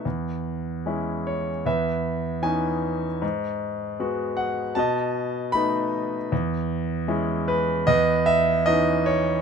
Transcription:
<<
  \new Staff \with { instrumentName = "Grand piano" } { \time 4/4 \key e \major \tempo 4 = 76 << { r4. cis''8 e''4 gis''4 | r4. fis''8 a''4 b''4 | r4. b'8 dis''8 e''8 dis''8 cis''8 | } \\ { r2 b'2 | r2 dis''2 | r2 b'2 | } >> }
  \new Staff \with { instrumentName = "Grand piano" } { \time 4/4 \key e \major e,4 <gis cis' e'>4 e,4 <e b cis' dis'>4 | gis,4 <gis b fis'>4 b,4 <a b dis'>4 | e,4 <gis cis' e'>4 e,4 <e b cis' dis'>4 | }
>>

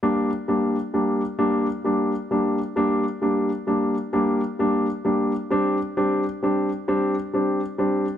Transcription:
\new Staff \with { instrumentName = "Grand piano" } { \time 6/8 \key g \minor \tempo 4. = 44 <g bes d'>8 <g bes d'>8 <g bes d'>8 <g bes d'>8 <g bes d'>8 <g bes d'>8 | <g bes d'>8 <g bes d'>8 <g bes d'>8 <g bes d'>8 <g bes d'>8 <g bes d'>8 | <g c' d'>8 <g c' d'>8 <g c' d'>8 <g c' d'>8 <g c' d'>8 <g c' d'>8 | }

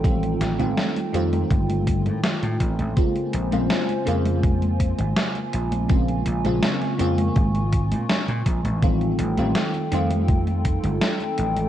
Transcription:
<<
  \new Staff \with { instrumentName = "Ambient pad" } { \time 4/4 \key bes \dorian \tempo 4 = 82 << { <ees' g''>1 | aes''1~ | aes''1 | <ees' g''>1 | } \\ { a'1 | c''1 | des'''1 | a'1 | } >> }
  \new Staff \with { instrumentName = "FM electric piano" } { \time 4/4 \key bes \dorian <ees g a c' f'>8. <ees g a c' f'>8. <ees g a c' f'>2~ <ees g a c' f'>8 | <des aes bes c' f'>8. <des aes bes c' f'>8. <des aes bes c' f'>2~ <des aes bes c' f'>8 | <des aes bes c' f'>8. <des aes bes c' f'>8. <des aes bes c' f'>2~ <des aes bes c' f'>8 | <ees g a c' f'>8. <ees g a c' f'>8. <ees g a c' f'>2~ <ees g a c' f'>8 | }
  \new Staff \with { instrumentName = "Slap bass" } { \clef bass \time 4/4 \key bes \dorian a,,8 a,,16 a,,16 r8 f,8 g,,8. a,16 r16 a,16 a,,16 a,,16 | r8 bes,,16 bes,,16 r8 f,4~ f,16 aes,,16 r8 bes,,8~ | bes,,8 bes,,16 bes,,16 r8 f,8 aes,,8. bes,16 r16 bes,16 bes,,16 a,,16~ | a,,8 a,,16 a,,16 r8 f,4~ f,16 g,,16 r8 a,,8 | }
  \new DrumStaff \with { instrumentName = "Drums" } \drummode { \time 4/4 <cgho hh bd>16 <cgho hh>16 <hh sn>16 <cgho hh>16 <cgho hh sn>16 <cgho hh>16 hh16 <cgho hh>16 <cgho hh bd>16 <cgho hh>16 <hh bd>16 <cgho hh>16 <cgho hh sn>16 <cgho hh>16 <hh bd>16 <cgho hh>16 | <cgho hh bd>16 <cgho hh>16 hh16 <cgho hh>16 <cgho hh sn>16 <cgho hh>16 hh16 <cgho hh>16 <cgho hh bd>16 <cgho hh>16 <hh bd>16 <cgho hh>16 <cgho hh sn>16 <cgho hh>16 hh16 <cgho hh>16 | <cgho hh bd>16 <cgho hh>16 hh16 <cgho hh>16 <cgho hh sn>16 <cgho hh sn>16 hh16 <cgho hh>16 <cgho hh bd>16 <cgho hh>16 <hh bd>16 <cgho hh>16 <cgho hh sn>16 <cgho hh>16 <hh bd>16 <cgho hh>16 | <cgho hh bd>16 <cgho hh>16 hh16 <cgho hh>16 <cgho hh sn>16 <cgho hh>16 hh16 <cgho hh>16 <cgho hh bd>16 <cgho hh>16 <hh bd>16 <cgho hh>16 <cgho hh sn>16 <cgho hh>16 hh16 <cgho hh>16 | }
>>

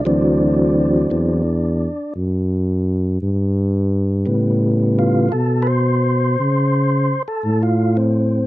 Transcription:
<<
  \new Staff \with { instrumentName = "Tonewheel organ" } { \time 12/8 \key d \mixolydian \tempo 4. = 57 d'2. r2. | r4 f'8 a'8 <b' c''>2~ <b' c''>16 a'8 f'8 c'8. | }
  \new Staff \with { instrumentName = "Tonewheel organ" } { \clef bass \time 12/8 \key d \mixolydian <e fis c'>4. <e fis c'>8 r1 | <cis g b>4. r1 r8 | }
  \new Staff \with { instrumentName = "Tuba" } { \clef bass \time 12/8 \key d \mixolydian d,4. e,4 r8 fis,4. g,4. | a,4. b,4. cis4 r8 a,4. | }
>>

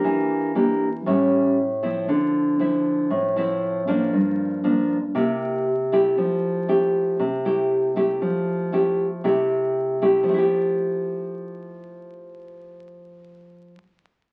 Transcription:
\new Staff \with { instrumentName = "Nylon-string guitar" } { \time 4/4 \key f \major \tempo 4 = 117 << { <bes d' g'>4 <bes d' g'>8 r8 <g cis' e'>4 r8 <f c' e'>8~ | <f c' e'>4 <f c' e'>4. <f c' e'>4 <f bes d'>8~ | <f bes d'>4 <f bes d'>8 r8 <bes e' g'>4 r8 <a e' g'>8~ | <a e' g'>4 <a e' g'>4 r8 <a e' g'>4 <a e' g'>8~ |
<a e' g'>4 <a e' g'>8 r8 <a e' g'>4. <a e' g'>8~ | <a e' g'>4 r2. | r1 | } \\ { e2 a,2 | d2 a,2 | g,2 c2 | f2 c2 |
f2 c2 | <f a e' g'>1~ | <f a e' g'>1 | } >> }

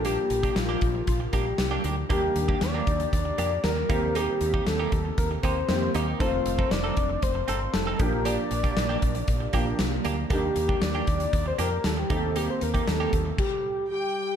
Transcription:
<<
  \new Staff \with { instrumentName = "Violin section" } { \time 4/4 \key c \dorian \tempo 4 = 117 r1 | r1 | r1 | r1 |
r1 | r1 | r2. g''4 | }
  \new Staff \with { instrumentName = "Soft synth lead" } { \time 4/4 \key c \dorian g'4 f'4 f'8 g'4 r8 | g'4 d''4 d''4 bes'4 | g'4 a'4 bes'8 c''4 r8 | c''4 d''4 c''8 c''8 a'8 bes'8 |
d''2. r4 | g'4 d''4 d''16 c''16 bes'8 a'16 g'16 a'8 | g'16 c''16 bes'8 a'4 g'4 g'4 | }
  \new Staff \with { instrumentName = "Clean electric guitar" } { \time 4/4 \key c \dorian <bes d' g'>16 r8 <bes d' g'>16 r16 <bes d' g'>16 r4 <bes d' g'>16 r8 <bes d' g'>16 <bes d' g'>16 r16 | <bes d' g'>16 r8 <bes d' g'>16 r16 <bes d' g'>16 r4 <bes d' g'>16 r8. <bes ees' g'>16 r16 | <bes ees' g'>16 r8 <bes ees' g'>16 r16 <bes ees' g'>16 r4 <bes ees' g'>16 r8. <bes ees' g'>16 <bes ees' g'>16 | <c' ees' a'>16 r8 <c' ees' a'>16 r16 <c' ees' a'>16 r4 <c' ees' a'>16 r8 <c' ees' a'>16 r8 |
<bes d' g'>16 r8 <bes d' g'>16 r16 <bes d' g'>16 r4 <bes d' g'>16 r8. <bes d' g'>16 r16 | <bes d' g'>16 r8 <bes d' g'>16 r16 <bes d' g'>16 r4 <bes d' g'>16 r8. <bes ees' g'>16 r16 | <bes ees' g'>16 r8 <bes ees' g'>16 r16 <bes ees' g'>16 r2 r8 | }
  \new Staff \with { instrumentName = "Grand piano" } { \time 4/4 \key c \dorian <f bes d' g'>2.~ <f bes d' g'>8 r8 | <ees bes d' g'>2.~ <ees bes d' g'>8 <ees bes c' g'>8~ | <ees bes c' g'>2. <ees bes c' g'>4 | <ees a c' f'>2.~ <ees a c' f'>8 <f bes d' g'>8~ |
<f bes d' g'>2~ <f bes d' g'>8 <f bes d' g'>4. | <ees bes d' g'>2.~ <ees bes d' g'>8 <ees bes c' g'>8~ | <ees bes c' g'>2 r2 | }
  \new Staff \with { instrumentName = "Fretless electric bass" } { \clef bass \time 4/4 \key c \dorian bes,,8 bes,,8 bes,,8 bes,,8 bes,,8 bes,,8 c,8 d,8 | ees,8 ees,8 ees,8 ees,8 ees,8 f,8 ees,8 ees,8~ | ees,8 ees,8 ees,8 ees,8 ees,8 ees,8 f,8 ees,8 | f,,8 f,,8 f,,8 f,,8 f,,8 g,,8 f,,8 bes,,8~ |
bes,,8 bes,,8 bes,,8 bes,,8 bes,,8 bes,,8 c,8 d,8 | ees,8 ees,8 ees,8 ees,8 ees,8 f,8 ees,8 ees,8~ | ees,8 ees,8 ees,8 ees,8 r2 | }
  \new DrumStaff \with { instrumentName = "Drums" } \drummode { \time 4/4 hh8 hh16 <hh bd>16 <hh sn>8 <hh bd>8 <hh bd>8 <hh bd>8 <hh sn>8 hh8 | <hh bd>8 hh16 bd16 <hh sn>8 <hh bd>16 hh16 <hh bd>8 hh8 <hh sn>8 <hh bd>8 | hh8 hh16 bd16 <hh sn>8 <hh bd>8 <hh bd>8 <hh bd>8 <hh sn>8 hh8 | <hh bd>8 hh16 bd16 <hh sn>8 <hh bd>8 <hh bd>8 hh8 <hh sn>8 <hh bd>8 |
hh8 hh16 <hh bd>16 <hh sn>8 <hh bd>16 hh16 <hh bd>8 <hh bd>8 <hh sn>8 hh8 | <hh bd>8 hh16 bd16 <hh sn>8 <hh bd>16 hh16 <hh bd>8 hh8 <hh sn>8 <hh bd>8 | hh8 hh16 <hh bd>16 <hh sn>8 <hh bd>8 <cymc bd>4 r4 | }
>>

